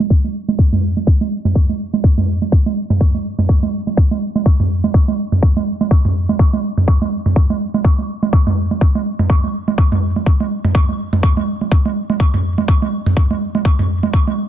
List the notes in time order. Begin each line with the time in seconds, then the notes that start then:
0.00 high conga
0.10 kick, high woodblock
0.24 high conga
0.48 high conga
0.59 kick, high woodblock
0.73 mid tom, high conga
0.97 high conga
1.07 kick, high woodblock
1.21 high conga
1.45 mid tom, high conga
1.55 kick, high woodblock
1.69 high conga
1.94 high conga
2.04 kick, high woodblock
2.18 mid tom, high conga
2.42 high conga
2.52 kick, high woodblock
2.66 high conga
2.90 mid tom, high conga
3.01 kick, high woodblock
3.14 high conga
3.39 mid tom, high conga
3.49 kick, high woodblock
3.63 high conga
3.87 high conga
3.97 kick, high woodblock
4.11 high conga
4.36 high conga
4.46 kick, high woodblock
4.60 mid tom, high conga
4.84 high conga
4.94 kick, high woodblock
5.08 high conga
5.32 mid tom, high conga
5.43 kick, high woodblock
5.57 high conga
5.81 high conga
5.91 kick, high woodblock
6.05 mid tom, high conga
6.29 high conga
6.39 kick, high woodblock
6.53 high conga
6.78 mid tom, high conga
6.88 kick, high woodblock
7.02 high conga
7.26 mid tom, high conga
7.36 kick, high woodblock
7.50 high conga
7.74 high conga
7.85 kick, high woodblock
7.98 high conga
8.23 high conga
8.33 kick, high woodblock
8.47 mid tom, high conga
8.71 high conga
8.81 kick, high woodblock
8.95 high conga
9.19 mid tom, high conga
9.30 kick, high woodblock
9.44 high conga
9.68 high conga
9.78 kick, high woodblock
9.92 mid tom, high conga
10.16 high conga
10.26 kick, high woodblock
10.40 high conga
10.65 mid tom, high conga
10.75 kick, high woodblock
10.89 high conga
11.13 mid tom, high conga
11.23 kick, high woodblock
11.37 high conga
11.61 high conga
11.72 kick, high woodblock
11.85 high conga
12.10 high conga
12.20 kick, high woodblock
12.34 mid tom, high conga
12.58 high conga
12.68 kick, high woodblock
12.82 high conga
13.06 mid tom, high conga
13.17 kick, high woodblock
13.31 high conga
13.55 high conga
13.65 kick, high woodblock
13.79 mid tom, high conga
14.03 high conga
14.13 kick, high woodblock
14.27 high conga